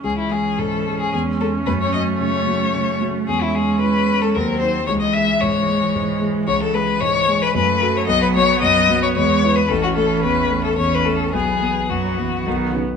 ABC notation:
X:1
M:3/4
L:1/16
Q:1/4=112
K:C#m
V:1 name="Violin"
G E G2 A3 G G2 A2 | B c d2 c6 z2 | G E G2 B3 A ^A2 =c2 | c d e2 c6 z2 |
[K:Bmix] c A B2 c3 B B3 c | d B c2 d3 c c3 B | A F A2 B3 A c B A2 | G4 F6 z2 |]
V:2 name="Viola"
C12- | C12 | C8 =C4 | G,12- |
[K:Bmix] G,8 A,4 | B,12 | C8 C4 | B,4 B,4 B,2 z2 |]
V:3 name="Grand piano" clef=bass
C,,2 G,2 G,,2 G,2 E,,2 [CG]2 | F,,2 F,2 C,2 F,2 C,2 F,2 | E,,2 G,2 E,2 G,2 _E,,2 [_E=c]2 | C,,2 G,2 G,,2 G,2 G,,2 G,2 |
[K:Bmix] C,,2 G,2 G,,2 G,2 F,,2 [FA]2 | B,,,2 F,2 F,,2 F,2 E,,2 [EB]2 | A,,,2 A,2 E,,2 A,2 E,,2 A,2 | B,,,2 B,2 F,,2 B,2 B,,,2 [DB]2 |]
V:4 name="Cello" clef=bass
E,8 G,4 | A,12 | G,8 _G,4 | E,12- |
[K:Bmix] E,8 F,4- | F,8 G,4 | E,8 E,4 | E,4 F,2 E,2 D,2 C,2 |]